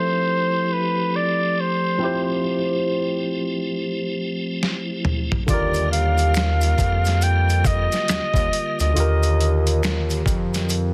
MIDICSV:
0, 0, Header, 1, 6, 480
1, 0, Start_track
1, 0, Tempo, 869565
1, 1103, Time_signature, 4, 2, 24, 8
1, 6037, End_track
2, 0, Start_track
2, 0, Title_t, "Flugelhorn"
2, 0, Program_c, 0, 56
2, 0, Note_on_c, 0, 72, 120
2, 404, Note_on_c, 0, 71, 97
2, 412, Note_off_c, 0, 72, 0
2, 640, Note_on_c, 0, 74, 98
2, 648, Note_off_c, 0, 71, 0
2, 885, Note_on_c, 0, 72, 98
2, 893, Note_off_c, 0, 74, 0
2, 1354, Note_off_c, 0, 72, 0
2, 3035, Note_on_c, 0, 74, 105
2, 3253, Note_off_c, 0, 74, 0
2, 3269, Note_on_c, 0, 77, 116
2, 3993, Note_on_c, 0, 79, 109
2, 4001, Note_off_c, 0, 77, 0
2, 4229, Note_on_c, 0, 75, 118
2, 4237, Note_off_c, 0, 79, 0
2, 4855, Note_off_c, 0, 75, 0
2, 4861, Note_on_c, 0, 75, 91
2, 5555, Note_off_c, 0, 75, 0
2, 6037, End_track
3, 0, Start_track
3, 0, Title_t, "Tine electric piano"
3, 0, Program_c, 1, 4
3, 0, Control_c, 1, 64, 127
3, 0, Note_on_c, 1, 53, 74
3, 0, Note_on_c, 1, 60, 69
3, 0, Note_on_c, 1, 64, 65
3, 0, Note_on_c, 1, 67, 64
3, 0, Note_on_c, 1, 69, 85
3, 1073, Note_off_c, 1, 53, 0
3, 1077, Note_off_c, 1, 60, 0
3, 1082, Note_off_c, 1, 64, 0
3, 1086, Note_off_c, 1, 67, 0
3, 1092, Note_off_c, 1, 69, 0
3, 1095, Note_on_c, 1, 53, 78
3, 1103, Note_on_c, 1, 60, 68
3, 1115, Note_on_c, 1, 64, 62
3, 1123, Note_on_c, 1, 67, 69
3, 1133, Note_on_c, 1, 72, 85
3, 2997, Note_off_c, 1, 53, 0
3, 3001, Note_off_c, 1, 60, 0
3, 3007, Note_off_c, 1, 64, 0
3, 3011, Note_off_c, 1, 67, 0
3, 3015, Note_on_c, 1, 50, 69
3, 3016, Note_off_c, 1, 72, 0
3, 3029, Note_on_c, 1, 65, 61
3, 3031, Control_c, 1, 64, 0
3, 3041, Note_on_c, 1, 67, 62
3, 3055, Note_on_c, 1, 70, 76
3, 3130, Control_c, 1, 64, 127
3, 4917, Note_off_c, 1, 50, 0
3, 4924, Note_off_c, 1, 65, 0
3, 4930, Note_off_c, 1, 67, 0
3, 4931, Note_on_c, 1, 50, 70
3, 4937, Note_off_c, 1, 70, 0
3, 4944, Note_on_c, 1, 65, 65
3, 4958, Note_on_c, 1, 67, 66
3, 4968, Note_on_c, 1, 70, 85
3, 6037, Note_off_c, 1, 50, 0
3, 6037, Note_off_c, 1, 65, 0
3, 6037, Note_off_c, 1, 67, 0
3, 6037, Note_off_c, 1, 70, 0
3, 6037, End_track
4, 0, Start_track
4, 0, Title_t, "Tonewheel organ"
4, 0, Program_c, 2, 16
4, 0, Note_on_c, 2, 53, 76
4, 0, Note_on_c, 2, 57, 60
4, 0, Note_on_c, 2, 64, 72
4, 0, Note_on_c, 2, 67, 84
4, 2999, Note_off_c, 2, 64, 0
4, 2999, Note_off_c, 2, 67, 0
4, 3000, Note_off_c, 2, 53, 0
4, 3001, Note_off_c, 2, 57, 0
4, 3027, Note_on_c, 2, 50, 79
4, 3028, Note_on_c, 2, 55, 64
4, 3029, Note_on_c, 2, 58, 64
4, 3029, Note_on_c, 2, 65, 83
4, 4926, Note_off_c, 2, 50, 0
4, 4927, Note_off_c, 2, 55, 0
4, 4927, Note_off_c, 2, 58, 0
4, 4927, Note_off_c, 2, 65, 0
4, 6037, End_track
5, 0, Start_track
5, 0, Title_t, "Analog synth bass"
5, 0, Program_c, 3, 38
5, 3027, Note_on_c, 3, 39, 122
5, 3723, Note_off_c, 3, 39, 0
5, 3745, Note_on_c, 3, 41, 105
5, 4350, Note_off_c, 3, 41, 0
5, 4470, Note_on_c, 3, 39, 47
5, 4528, Note_off_c, 3, 39, 0
5, 4606, Note_on_c, 3, 39, 91
5, 4686, Note_off_c, 3, 39, 0
5, 4856, Note_on_c, 3, 38, 89
5, 4932, Note_off_c, 3, 38, 0
5, 4947, Note_on_c, 3, 39, 115
5, 5643, Note_off_c, 3, 39, 0
5, 5664, Note_on_c, 3, 41, 113
5, 6037, Note_off_c, 3, 41, 0
5, 6037, End_track
6, 0, Start_track
6, 0, Title_t, "Drums"
6, 2555, Note_on_c, 9, 38, 60
6, 2610, Note_off_c, 9, 38, 0
6, 2786, Note_on_c, 9, 45, 92
6, 2841, Note_off_c, 9, 45, 0
6, 2935, Note_on_c, 9, 43, 105
6, 2990, Note_off_c, 9, 43, 0
6, 3025, Note_on_c, 9, 36, 121
6, 3026, Note_on_c, 9, 82, 54
6, 3030, Note_on_c, 9, 42, 88
6, 3080, Note_off_c, 9, 36, 0
6, 3081, Note_off_c, 9, 82, 0
6, 3085, Note_off_c, 9, 42, 0
6, 3168, Note_on_c, 9, 82, 48
6, 3179, Note_on_c, 9, 42, 44
6, 3223, Note_off_c, 9, 82, 0
6, 3235, Note_off_c, 9, 42, 0
6, 3274, Note_on_c, 9, 42, 67
6, 3329, Note_off_c, 9, 42, 0
6, 3410, Note_on_c, 9, 82, 42
6, 3417, Note_on_c, 9, 42, 58
6, 3465, Note_off_c, 9, 82, 0
6, 3472, Note_off_c, 9, 42, 0
6, 3502, Note_on_c, 9, 26, 65
6, 3502, Note_on_c, 9, 82, 61
6, 3513, Note_on_c, 9, 42, 82
6, 3516, Note_off_c, 9, 26, 0
6, 3516, Note_on_c, 9, 26, 96
6, 3516, Note_on_c, 9, 38, 124
6, 3557, Note_off_c, 9, 82, 0
6, 3568, Note_off_c, 9, 42, 0
6, 3571, Note_off_c, 9, 26, 0
6, 3571, Note_off_c, 9, 38, 0
6, 3649, Note_on_c, 9, 82, 59
6, 3660, Note_on_c, 9, 42, 53
6, 3705, Note_off_c, 9, 82, 0
6, 3715, Note_off_c, 9, 42, 0
6, 3743, Note_on_c, 9, 36, 94
6, 3744, Note_on_c, 9, 82, 57
6, 3753, Note_on_c, 9, 42, 67
6, 3799, Note_off_c, 9, 36, 0
6, 3800, Note_off_c, 9, 82, 0
6, 3809, Note_off_c, 9, 42, 0
6, 3892, Note_on_c, 9, 82, 47
6, 3901, Note_on_c, 9, 42, 53
6, 3909, Note_on_c, 9, 38, 40
6, 3947, Note_off_c, 9, 82, 0
6, 3956, Note_off_c, 9, 42, 0
6, 3964, Note_off_c, 9, 38, 0
6, 3984, Note_on_c, 9, 82, 70
6, 3987, Note_on_c, 9, 42, 84
6, 4039, Note_off_c, 9, 82, 0
6, 4042, Note_off_c, 9, 42, 0
6, 4136, Note_on_c, 9, 82, 51
6, 4140, Note_on_c, 9, 42, 57
6, 4192, Note_off_c, 9, 82, 0
6, 4196, Note_off_c, 9, 42, 0
6, 4220, Note_on_c, 9, 36, 99
6, 4221, Note_on_c, 9, 82, 51
6, 4231, Note_on_c, 9, 42, 74
6, 4275, Note_off_c, 9, 36, 0
6, 4276, Note_off_c, 9, 82, 0
6, 4286, Note_off_c, 9, 42, 0
6, 4373, Note_on_c, 9, 42, 45
6, 4373, Note_on_c, 9, 82, 47
6, 4383, Note_on_c, 9, 38, 44
6, 4428, Note_off_c, 9, 42, 0
6, 4428, Note_off_c, 9, 82, 0
6, 4438, Note_off_c, 9, 38, 0
6, 4461, Note_on_c, 9, 42, 76
6, 4468, Note_on_c, 9, 26, 84
6, 4468, Note_on_c, 9, 38, 106
6, 4473, Note_off_c, 9, 26, 0
6, 4473, Note_on_c, 9, 26, 64
6, 4473, Note_on_c, 9, 82, 73
6, 4517, Note_off_c, 9, 42, 0
6, 4523, Note_off_c, 9, 38, 0
6, 4528, Note_off_c, 9, 26, 0
6, 4528, Note_off_c, 9, 82, 0
6, 4601, Note_on_c, 9, 36, 90
6, 4613, Note_on_c, 9, 82, 41
6, 4617, Note_on_c, 9, 42, 53
6, 4657, Note_off_c, 9, 36, 0
6, 4668, Note_off_c, 9, 82, 0
6, 4672, Note_off_c, 9, 42, 0
6, 4709, Note_on_c, 9, 42, 77
6, 4764, Note_off_c, 9, 42, 0
6, 4855, Note_on_c, 9, 82, 51
6, 4860, Note_on_c, 9, 42, 52
6, 4910, Note_off_c, 9, 82, 0
6, 4915, Note_off_c, 9, 42, 0
6, 4949, Note_on_c, 9, 42, 86
6, 4950, Note_on_c, 9, 82, 60
6, 5004, Note_off_c, 9, 42, 0
6, 5005, Note_off_c, 9, 82, 0
6, 5094, Note_on_c, 9, 82, 45
6, 5097, Note_on_c, 9, 42, 45
6, 5149, Note_off_c, 9, 82, 0
6, 5153, Note_off_c, 9, 42, 0
6, 5192, Note_on_c, 9, 42, 67
6, 5247, Note_off_c, 9, 42, 0
6, 5337, Note_on_c, 9, 42, 57
6, 5337, Note_on_c, 9, 82, 47
6, 5392, Note_off_c, 9, 42, 0
6, 5392, Note_off_c, 9, 82, 0
6, 5427, Note_on_c, 9, 26, 58
6, 5427, Note_on_c, 9, 82, 54
6, 5431, Note_on_c, 9, 42, 83
6, 5435, Note_off_c, 9, 26, 0
6, 5435, Note_on_c, 9, 26, 97
6, 5435, Note_on_c, 9, 38, 113
6, 5483, Note_off_c, 9, 82, 0
6, 5486, Note_off_c, 9, 42, 0
6, 5490, Note_off_c, 9, 26, 0
6, 5490, Note_off_c, 9, 38, 0
6, 5574, Note_on_c, 9, 82, 55
6, 5581, Note_on_c, 9, 42, 55
6, 5630, Note_off_c, 9, 82, 0
6, 5636, Note_off_c, 9, 42, 0
6, 5662, Note_on_c, 9, 36, 91
6, 5672, Note_on_c, 9, 42, 68
6, 5672, Note_on_c, 9, 82, 58
6, 5718, Note_off_c, 9, 36, 0
6, 5727, Note_off_c, 9, 42, 0
6, 5727, Note_off_c, 9, 82, 0
6, 5818, Note_on_c, 9, 82, 48
6, 5820, Note_on_c, 9, 42, 57
6, 5828, Note_on_c, 9, 38, 36
6, 5873, Note_off_c, 9, 82, 0
6, 5875, Note_off_c, 9, 42, 0
6, 5883, Note_off_c, 9, 38, 0
6, 5902, Note_on_c, 9, 82, 70
6, 5908, Note_on_c, 9, 42, 82
6, 5957, Note_off_c, 9, 82, 0
6, 5963, Note_off_c, 9, 42, 0
6, 6037, End_track
0, 0, End_of_file